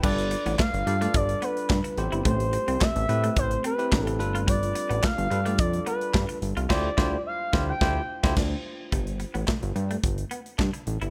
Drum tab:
CC |x---------------|----------------|----------------|x-----------x---|
HH |-xxx-xxxxxxx-xxx|xxxx-xxxxxxx-xxx|xxxx-xxxxxxx-xxx|----------------|
CP |----x-------x---|----x-------x---|----x-------x---|----------------|
SD |----o-------o---|----o-------o---|----o-------o---|o-o---o-o--oo---|
BD |o---o---o---o---|o---o---o---o---|o---o---o---o---|o-o---o-o--oo---|

CC |----------------|
HH |xxxx-xxxxxxx-xxx|
CP |----x-------x---|
SD |----o-------o---|
BD |o---o---o---o---|